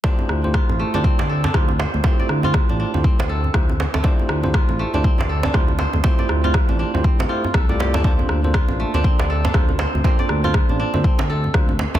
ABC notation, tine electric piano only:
X:1
M:4/4
L:1/16
Q:"Swing 16ths" 1/4=120
K:Dm
V:1 name="Tine electric piano"
[A,EFGc]3 [A,EFGc]4 [A,EFGc]2 z3 [A,EFGc] z3 | [A,EFGc]3 [A,EFGc]4 [A,EFGc]2 z3 [A,EFGc] z3 | [A,EFGc]3 [A,EFGc]4 [A,EFGc]2 z3 [A,EFGc] z3 | [A,EFGc]3 [A,EFGc]4 [A,EFGc]2 z [A,EFGc] z2 [A,EFGd]3 |
[B,DFAc]3 [B,DFAc]4 [B,DFAc]2 z3 [B,DFAc] z3 | [B,DFAc]3 [B,DFAc]4 [B,DFAc]2 z3 [B,DFAc] z3 |]